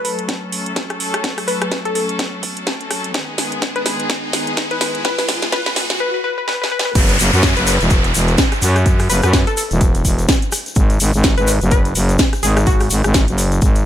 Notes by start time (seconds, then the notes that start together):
Already playing: F#3 A3 C#4 A4, riser
0.05 B4, open hi-hat
0.19 closed hi-hat
0.29 kick, snare, closed hi-hat
0.52 open hi-hat
0.66 closed hi-hat
0.76 kick, snare, closed hi-hat
0.90 cross-stick, closed hi-hat
1.00 open hi-hat
1.14 cross-stick, closed hi-hat
1.24 kick, snare, closed hi-hat
1.38 cross-stick, open hi-hat
1.48 B4, open hi-hat
1.61 B4, cross-stick, closed hi-hat
1.72 kick, snare, closed hi-hat
1.85 A4, closed hi-hat
1.95 A4, open hi-hat
2.09 closed hi-hat
2.19 kick, snare, closed hi-hat
2.43 kick, open hi-hat
2.57 closed hi-hat
2.67 kick, snare, closed hi-hat
2.81 closed hi-hat
2.91 cross-stick, open hi-hat
3.04 closed hi-hat
3.14 D#3 G#3 B3 G#4, kick, snare, closed hi-hat
3.38 snare, open hi-hat
3.52 closed hi-hat
3.62 kick, snare, closed hi-hat
3.76 B4, closed hi-hat
3.86 B4, snare, open hi-hat
4.00 closed hi-hat
4.10 kick, snare, closed hi-hat
4.33 snare, open hi-hat
4.47 closed hi-hat
4.57 kick, snare, closed hi-hat
4.71 B4, closed hi-hat
4.81 B4, snare, open hi-hat
4.95 closed hi-hat
5.05 B4, kick, snare, closed hi-hat
5.18 B4, snare, open hi-hat
5.29 snare, open hi-hat
5.42 snare, closed hi-hat
5.52 B4, kick, snare, closed hi-hat
5.66 B4, snare, closed hi-hat
5.76 snare, open hi-hat
5.90 snare, closed hi-hat
6.00 B4
6.14 B4
6.24 B4
6.38 B4
6.48 B4, snare
6.62 B4, snare
6.72 B4
6.79 snare
6.85 B4
6.95 F#1, kick, closed hi-hat, crash, downlifter, shaker
7.09 closed hi-hat, shaker
7.19 F#1, open hi-hat, shaker
7.33 F#2, shaker
7.43 kick, snare, closed hi-hat, shaker
7.57 F#1 B4, closed hi-hat, shaker
7.67 B4, open hi-hat, shaker
7.81 E1, closed hi-hat, shaker
7.90 kick, closed hi-hat, shaker
8.04 closed hi-hat, shaker
8.14 E1, open hi-hat, shaker
8.28 closed hi-hat, shaker
8.38 kick, snare, closed hi-hat, shaker
8.52 cross-stick, closed hi-hat, shaker
8.62 F#2, open hi-hat, shaker
8.76 cross-stick, closed hi-hat, shaker
8.86 kick, closed hi-hat, shaker
8.99 cross-stick, open hi-hat, shaker
9.09 F#1 B4, open hi-hat, shaker
9.22 F#2 B4, cross-stick, closed hi-hat, shaker
9.33 kick, snare, closed hi-hat, shaker
9.47 A4, closed hi-hat, shaker
9.57 A4, open hi-hat, shaker
9.71 E1, closed hi-hat, shaker
9.81 kick, closed hi-hat, shaker
9.95 closed hi-hat, shaker
10.05 E1, kick, open hi-hat, shaker
10.19 closed hi-hat, shaker
10.29 kick, snare, closed hi-hat, shaker
10.42 closed hi-hat, shaker
10.52 cross-stick, open hi-hat, shaker
10.66 closed hi-hat, shaker
10.75 G#1, kick, closed hi-hat, shaker
10.90 closed hi-hat, shaker
11.00 G#1, open hi-hat, shaker
11.13 G#1, shaker
11.24 kick, snare, closed hi-hat, shaker
11.38 G#1 B4, closed hi-hat, shaker
11.47 B4, open hi-hat, shaker
11.61 F#1, closed hi-hat, shaker
11.71 B4, kick, closed hi-hat, shaker
11.85 closed hi-hat, shaker
11.95 F#1, open hi-hat, shaker
12.09 closed hi-hat, shaker
12.19 kick, snare, closed hi-hat, shaker
12.33 cross-stick, closed hi-hat, shaker
12.43 G#1 G#4, open hi-hat, shaker
12.57 cross-stick, closed hi-hat, shaker
12.67 F#4, kick, closed hi-hat, shaker
12.80 cross-stick, open hi-hat, shaker
12.90 G#1, open hi-hat, shaker
13.04 G#1, cross-stick, closed hi-hat, shaker
13.14 kick, snare, closed hi-hat, shaker
13.28 F#1, closed hi-hat, shaker
13.38 open hi-hat, shaker
13.52 closed hi-hat, shaker
13.62 G#1, kick, closed hi-hat, shaker
13.75 closed hi-hat, shaker